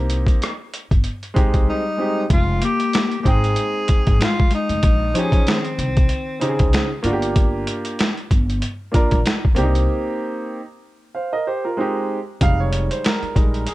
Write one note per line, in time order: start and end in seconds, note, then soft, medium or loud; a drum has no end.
0.00 0.24 C2 loud
0.00 0.47 A#3 medium
0.00 0.48 C4 medium
0.00 0.52 D#4 medium
0.00 0.49 G4 medium
0.10 closed hi-hat medium
0.27 kick medium
0.27 closed hi-hat medium
0.42 cross-stick medium
0.42 closed hi-hat medium
0.74 closed hi-hat medium
0.91 1.03 G1 medium
0.91 kick medium
0.91 closed hi-hat soft
1.04 closed hi-hat medium
1.23 closed hi-hat soft
1.34 1.65 C2 medium
1.34 1.81 G#3 medium
1.34 1.81 C4 medium
1.34 1.82 D#4 medium
1.34 1.82 G4 medium
1.34 kick medium
1.34 closed hi-hat medium
1.54 kick medium
1.54 closed hi-hat medium
1.67 2.26 G3 medium
1.67 2.28 D#4 medium
1.97 2.22 G#3 medium
1.97 2.22 C4 medium
1.97 2.23 D#4 medium
1.97 2.23 G4 medium
2.30 2.59 F1 loud
2.30 2.60 G#3 medium
2.30 2.61 F4 loud
2.30 kick loud
2.30 closed hi-hat medium
2.62 3.15 A#3 medium
2.62 3.17 G4 loud
2.62 closed hi-hat loud
2.80 closed hi-hat medium
2.93 snare loud
2.93 closed hi-hat medium
3.11 closed hi-hat soft
3.20 4.14 G#3 medium
3.20 3.26 A#3 medium
3.20 3.30 G4 medium
3.24 3.54 G#1 medium
3.24 4.14 C4 medium
3.24 4.20 C4 medium
3.24 4.15 D#4 medium
3.24 4.22 G#4 loud
3.24 4.15 G5 medium
3.24 kick medium
3.24 closed hi-hat medium
3.44 closed hi-hat soft
3.56 closed hi-hat medium
3.88 kick medium
3.88 closed hi-hat medium
4.07 4.19 G#1 medium
4.07 kick medium
4.07 closed hi-hat medium
4.19 4.49 G#3 medium
4.19 4.51 F4 medium
4.19 snare loud
4.19 closed hi-hat medium
4.40 kick medium
4.51 5.11 G#3 medium
4.51 5.20 D#4 medium
4.51 closed hi-hat medium
4.69 4.82 F1 medium
4.69 closed hi-hat medium
4.83 5.12 A#1 loud
4.83 kick loud
4.83 closed hi-hat medium
5.14 5.45 F3 medium
5.14 5.61 C#4 medium
5.14 5.62 D#4 medium
5.14 5.24 G4 medium
5.14 5.61 C5 medium
5.14 closed hi-hat loud
5.18 5.48 C#4 medium
5.24 5.66 G#4 medium
5.32 kick medium
5.32 closed hi-hat medium
5.46 7.00 D#3 medium
5.46 7.02 C4 medium
5.46 snare loud
5.46 closed hi-hat medium
5.65 closed hi-hat soft
5.78 6.07 C2 medium
5.78 closed hi-hat medium
5.97 kick medium
5.97 closed hi-hat soft
6.09 closed hi-hat medium
6.40 6.87 C#3 medium
6.40 6.87 C4 medium
6.40 6.88 D#4 medium
6.40 6.49 G4 medium
6.40 closed hi-hat medium
6.49 6.91 G#4 medium
6.59 6.72 C2 medium
6.59 kick medium
6.59 closed hi-hat medium
6.73 snare loud
6.73 closed hi-hat medium
7.03 7.64 G1 medium
7.03 8.05 A#3 medium
7.03 8.06 D4 medium
7.03 8.07 F4 medium
7.03 7.13 F#4 medium
7.03 closed hi-hat medium
7.13 8.11 G4 medium
7.22 closed hi-hat medium
7.36 kick loud
7.36 closed hi-hat medium
7.67 closed hi-hat loud
7.85 closed hi-hat medium
7.99 snare loud
7.99 closed hi-hat medium
8.17 closed hi-hat soft
8.31 8.59 G1 medium
8.31 kick medium
8.31 closed hi-hat medium
8.50 closed hi-hat soft
8.62 closed hi-hat medium
8.92 9.16 A#3 medium
8.92 9.17 D4 medium
8.92 9.17 F4 medium
8.92 9.18 A#4 medium
8.92 kick medium
8.92 closed hi-hat medium
9.11 9.24 A#1 medium
9.11 kick medium
9.11 closed hi-hat medium
9.26 snare loud
9.26 closed hi-hat medium
9.45 kick medium
9.55 9.85 C2 loud
9.55 10.58 A#3 medium
9.55 10.58 C4 medium
9.55 9.65 D4 medium
9.55 10.59 G4 loud
9.55 closed hi-hat medium
9.63 10.62 D#4 medium
9.75 closed hi-hat medium
11.15 11.32 C5 medium
11.15 11.32 F5 medium
11.33 11.46 A#4 medium
11.33 11.46 D#5 medium
11.47 11.64 G4 medium
11.47 11.64 C5 medium
11.65 11.95 F4 medium
11.65 11.95 A#4 medium
11.77 12.16 G#3 medium
11.77 12.17 C4 medium
11.77 12.18 D#4 medium
11.77 12.18 G4 medium
12.41 12.87 F1 loud
12.41 13.32 G3 medium
12.41 13.32 G#3 soft
12.41 13.32 D#4 medium
12.41 12.61 F5 loud
12.41 kick loud
12.41 closed hi-hat medium
12.60 12.92 C#5 medium
12.73 closed hi-hat medium
12.91 13.05 C5 medium
12.91 closed hi-hat medium
13.04 13.70 A#4 medium
13.04 snare loud
13.04 closed hi-hat medium
13.23 muted upright bass stroke soft
13.23 closed hi-hat soft
13.35 13.65 A#1 medium
13.35 13.64 G3 medium
13.35 13.64 G#3 soft
13.35 13.64 D#4 medium
13.35 kick medium
13.35 closed hi-hat medium
13.54 closed hi-hat soft
13.67 13.74 G#4 medium
13.67 closed hi-hat medium